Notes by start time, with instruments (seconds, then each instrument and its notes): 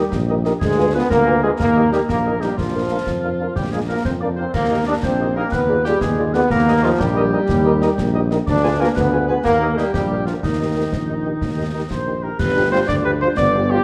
Already playing: trombone section G3, woodwind section G4
0.12 tuba A#1, concert bass drum, snare
0.29 french horn section D#4 G4 A#4, cornet D#5
0.44 french horn section D#4 G4 A#4, cornet D#5, snare
0.61 tuba D2, trombone section G#3, woodwind section G#4, concert bass drum, snare, crash
0.77 french horn section F4 B4, cornet G#5
0.94 trombone section B3, french horn section F4 B4, woodwind section B4, cornet G#5
1.10 tuba D2, trombone section A#3, woodwind section A#4, concert bass drum, snare
1.27 french horn section F4 B4, cornet G#5
1.43 trombone section G#3, french horn section F4 B4, woodwind section G#4, cornet G#5
1.59 tuba D#2, trombone section A#3, woodwind section A#4, concert bass drum, snare
1.75 french horn section D#4 G4 A#4, cornet D#5
1.91 trombone section G3, french horn section D#4 G4 A#4, woodwind section G4, cornet D#5, snare
2.09 tuba A#1, trombone section A#3, woodwind section A#4, concert bass drum, snare
2.26 french horn section D#4 G4 A#4, cornet D#5
2.40 trombone section G3, french horn section D#4 G4 A#4, woodwind section G4, cornet D#5, snare
2.57 tuba A#1, trombone section F3, woodwind section F4, concert bass drum, snare
2.75 french horn section D4 F4 A#4, cornet F5
2.90 french horn section D4 F4 A#4, cornet F5
3.07 tuba F2, concert bass drum, snare
3.24 french horn section D4 F4 A#4, cornet F5
3.40 french horn section D4 F4 A#4, cornet F5
3.56 tuba A#1, trombone section G3, woodwind section G4, concert bass drum, snare
3.72 trombone section G#3, french horn section D4 F4 A#4, woodwind section G#4, cornet F5
3.88 trombone section A#3, french horn section D4 F4 A#4, woodwind section A#4, cornet F5
4.05 tuba F2, trombone section C4, woodwind section C5, concert bass drum, snare
4.21 french horn section D4 F4 A#4, trombone section D4, woodwind section D5, cornet F5
4.36 trombone section C4, french horn section D4 F4 A#4, woodwind section C5, cornet F5
4.54 tuba D#2, trombone section A#3, woodwind section A#4, concert bass drum, snare, crash
4.71 french horn section D#4 G4 A#4, cornet D#5
4.87 trombone section D4, french horn section D#4 G4 A#4, woodwind section D5, cornet D#5
5.03 tuba A#1, trombone section C4, woodwind section C5, concert bass drum, snare
5.19 french horn section D#4 G4 A#4, cornet D#5
5.36 trombone section A#3, french horn section D#4 G4 A#4, woodwind section A#4, cornet D#5
5.52 tuba D#2, trombone section B3, woodwind section B4, concert bass drum, snare
5.69 french horn section F4 G#4, cornet D5
5.85 trombone section G3, french horn section F4 G#4, woodwind section G4, cornet D5, snare
6.01 tuba D#2, trombone section G#3, woodwind section G#4, concert bass drum, snare
6.18 french horn section F4 G#4, cornet D5
6.33 trombone section B3, french horn section F4 G#4, woodwind section B4, cornet D5, snare
6.50 tuba D#2, trombone section A#3, woodwind section A#4, concert bass drum, snare
6.68 french horn section D#4 G4 A#4, cornet D#5
6.83 trombone section F3, french horn section D#4 G4 A#4, woodwind section F4, cornet D#5
6.99 tuba A#1, trombone section G3, woodwind section G4, concert bass drum, snare
7.17 french horn section D#4 G4 A#4, cornet D#5
7.33 french horn section D#4 G4 A#4, cornet D#5
7.49 tuba D#2, concert bass drum, snare
7.65 french horn section D#4 G4 A#4, cornet D#5
7.82 french horn section D#4 G4 A#4, cornet D#5, snare
7.98 tuba A#1, concert bass drum, snare
8.14 french horn section D#4 G4 A#4, cornet D#5
8.30 french horn section D#4 G4 A#4, cornet D#5, snare
8.47 tuba D2, trombone section D4, woodwind section D5, concert bass drum, snare, crash
8.63 french horn section F4 G#4 B4, cornet G#5
8.80 trombone section A#3, french horn section F4 G#4 B4, woodwind section A#4, cornet G#5
8.96 tuba D2, trombone section B3, woodwind section B4, concert bass drum, snare
9.12 french horn section F4 G#4 B4, cornet G#5
9.28 trombone section B3, french horn section F4 G#4 B4, woodwind section B4, cornet G#5
9.44 tuba D#2, trombone section A#3, woodwind section A#4, concert bass drum, snare
9.61 french horn section D#4 G4 A#4, cornet D#5
9.78 trombone section G3, french horn section D#4 G4 A#4, woodwind section G4, cornet D#5, snare
9.94 tuba A#1, trombone section G3, woodwind section G4, concert bass drum, snare
10.11 french horn section D4 F4 A#4, cornet F5
10.27 trombone section F3, french horn section D4 F4 A#4, woodwind section F4, cornet F5, snare
10.43 tuba D#2, trombone section D#3, woodwind section D#4, concert bass drum, snare
10.59 french horn section D#4 G4 A#4, cornet D#5
10.76 french horn section D#4 G4 A#4, cornet D#5
10.92 tuba A#1, concert bass drum, snare
11.09 french horn section D#4 G4 A#4, cornet D#5
11.25 french horn section D#4 G4 A#4, cornet D#5
11.41 tuba D#2, concert bass drum, snare
11.57 french horn section D#4 G4 A#4, cornet D#5
11.73 french horn section D#4 G4 A#4, cornet D#5
11.90 tuba A#1, cornet C5, woodwind section C5, concert bass drum, snare
12.07 french horn section D#4 G4 A#4
12.23 french horn section D#4 G4 A#4, woodwind section A#4, cornet A#4
12.39 tuba G1, euphonium G4, cornet B4, woodwind section B4, concert bass drum, snare, crash
12.56 french horn section F3 D4 G4
12.72 french horn section F3 D4 G4, trombone section G3 F4, cornet C5, woodwind section C5
12.88 tuba D2, euphonium D4, cornet D5, woodwind section D5, concert bass drum, snare
13.04 french horn section F3 D4 G4, cornet B4, woodwind section B4
13.21 french horn section F3 D4 G4, trombone section G3 F4, cornet C5, woodwind section C5
13.37 tuba G1, euphonium B3, cornet D5, woodwind section D5, concert bass drum, snare
13.55 french horn section F3 D4 G4
13.71 french horn section F3 D4 G4, trombone section G3 F4, cornet G4, woodwind section G4